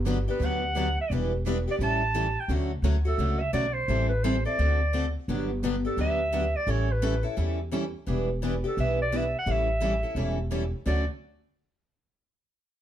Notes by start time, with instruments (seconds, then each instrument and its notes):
Already playing: upright bass G1
0.06 steel-string acoustic guitar D3 F#3 B3 D4 G4
0.28 steel-string acoustic guitar B3 D4 G4, clarinet B4
0.39 upright bass D2, steel-string acoustic guitar D3 F#3 B3 D4 G4
0.45 clarinet F#5
0.76 steel-string acoustic guitar D3 F#3 B3 D4 G4
1.01 clarinet E5
1.10 upright bass E1, steel-string acoustic guitar E3 G3 B3 D4 E4 G4 B4
1.46 steel-string acoustic guitar E3 G3 B3 D4 E4 G4 B4
1.67 steel-string acoustic guitar B3 D4 G4, clarinet D5
1.79 upright bass A1, steel-string acoustic guitar E3 G3 C#4 E4 A4
1.83 clarinet A5
2.15 steel-string acoustic guitar E3 G3 C#4 E4 A4
2.40 clarinet G5
2.48 upright bass D2, steel-string acoustic guitar D3 F#3 A3 C#4 F#4 A4
2.82 upright bass D2, steel-string acoustic guitar D3 F#3 A3 C#4 F#4 A4
3.05 steel-string acoustic guitar A3 C#4 F#4, clarinet A4
3.18 upright bass C#2, steel-string acoustic guitar D3 F#3 A3 C#4 F#4 A4
3.40 clarinet E5
3.53 upright bass B1, steel-string acoustic guitar D3 F#3 A3 C#4 F#4 A4, clarinet D5
3.73 clarinet C5
3.88 upright bass A1, steel-string acoustic guitar E3 G3 C4 E4 A4
4.09 clarinet B4
4.24 steel-string acoustic guitar E3 G3 C4 E4 A4, clarinet C5
4.45 steel-string acoustic guitar C4 E4 A4, clarinet D5
4.59 upright bass D2, steel-string acoustic guitar D3 A3 C4 F#4 A4
4.93 steel-string acoustic guitar D3 A3 C4 F#4 A4
5.28 upright bass G1, steel-string acoustic guitar D3 F#3 B3 D4 G4
5.64 steel-string acoustic guitar D3 F#3 B3 D4 G4
5.85 steel-string acoustic guitar B3 D4 G4, clarinet A4
5.97 upright bass D2, steel-string acoustic guitar D3 F#3 B3 D4 G4
6.01 clarinet E5
6.32 steel-string acoustic guitar D3 F#3 B3 D4 G4
6.56 clarinet D5
6.67 upright bass A1, steel-string acoustic guitar E3 G3 C#4 E4 A4, clarinet C#5
6.92 clarinet B4
7.02 steel-string acoustic guitar E3 G3 C#4 E4 A4
7.23 steel-string acoustic guitar C#4 E4 A4
7.37 upright bass E2, steel-string acoustic guitar E3 G3 C#4 E4 A4
7.72 steel-string acoustic guitar E3 G3 C#4 E4 A4
8.06 upright bass E1, steel-string acoustic guitar E3 G3 B3 D4 E4 G4 B4
8.42 steel-string acoustic guitar E3 G3 B3 D4 E4 G4 B4
8.64 steel-string acoustic guitar B3 D4 G4
8.68 clarinet A4
8.77 upright bass B1, steel-string acoustic guitar E3 G3 B3 D4 E4 G4 B4, clarinet E5
9.02 clarinet D5
9.12 steel-string acoustic guitar E3 G3 B3 D4 E4 G4 B4
9.17 clarinet E5
9.39 clarinet F#5
9.46 upright bass A1, steel-string acoustic guitar E3 G3 C#4 E4 A4
9.51 clarinet E5
9.80 steel-string acoustic guitar E3 G3 C#4 E4 A4
10.03 steel-string acoustic guitar C#4 E4 A4
10.15 upright bass E1, steel-string acoustic guitar E3 G3 C#4 E4 A4
10.51 steel-string acoustic guitar E3 G3 C#4 E4 A4
10.86 upright bass D2, steel-string acoustic guitar D3 F#3 A3 C#4 F#4 A4, clarinet D5